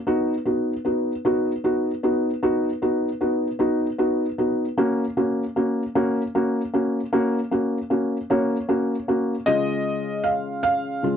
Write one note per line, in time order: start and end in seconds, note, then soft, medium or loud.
0.07 0.33 B3 medium
0.07 0.33 D#4 medium
0.07 0.34 F#4 medium
0.46 0.72 B3 medium
0.46 0.73 D#4 soft
0.46 0.73 F#4 medium
0.85 1.11 B3 soft
0.85 1.12 D#4 soft
0.85 1.12 F#4 soft
1.25 1.51 B3 medium
1.25 1.51 D#4 medium
1.25 1.51 F#4 medium
1.64 1.90 B3 soft
1.64 1.90 D#4 medium
1.64 1.91 F#4 medium
2.03 2.29 B3 medium
2.03 2.30 D#4 soft
2.03 2.30 F#4 medium
2.43 2.69 B3 medium
2.43 2.69 D#4 medium
2.43 2.69 F#4 medium
2.82 3.08 B3 medium
2.82 3.08 D#4 medium
2.82 3.08 F#4 medium
3.21 3.47 B3 medium
3.21 3.47 D#4 soft
3.21 3.47 F#4 medium
3.59 3.86 B3 medium
3.59 3.86 D#4 medium
3.59 3.86 F#4 medium
3.98 4.25 B3 medium
3.98 4.25 D#4 medium
3.98 4.25 F#4 medium
4.38 4.64 B3 soft
4.38 4.64 D#4 medium
4.38 4.65 F#4 medium
4.77 5.04 A#3 medium
4.77 5.04 C#4 medium
4.77 5.04 F#4 medium
5.17 5.43 A#3 soft
5.17 5.43 C#4 medium
5.17 5.43 F#4 medium
5.56 5.82 A#3 medium
5.56 5.82 C#4 soft
5.56 5.82 F#4 medium
5.95 6.21 A#3 medium
5.95 6.21 C#4 medium
5.95 6.21 F#4 medium
6.35 6.60 A#3 medium
6.35 6.61 C#4 medium
6.35 6.61 F#4 medium
6.74 6.99 A#3 medium
6.74 7.00 C#4 medium
6.74 7.00 F#4 medium
7.13 7.38 A#3 medium
7.13 7.39 C#4 medium
7.13 7.39 F#4 medium
7.51 7.77 A#3 medium
7.51 7.78 C#4 soft
7.51 7.78 F#4 medium
7.90 8.16 A#3 soft
7.90 8.16 C#4 medium
7.90 8.17 F#4 medium
8.30 8.56 A#3 medium
8.30 8.56 C#4 medium
8.30 8.56 F#4 medium
8.30 9.50 C#5 medium
8.69 8.95 A#3 medium
8.69 8.95 C#4 medium
8.69 8.95 F#4 medium
9.08 9.34 A#3 medium
9.08 9.34 C#4 soft
9.08 9.34 F#4 medium
9.46 11.01 C#3 medium
9.46 11.02 G#3 medium
9.46 11.03 F4 medium
9.46 10.27 D#5 loud
10.24 10.62 F5 medium
10.63 11.17 F5 loud
11.03 11.17 C#3 soft
11.03 11.17 G#3 soft
11.03 11.17 F4 medium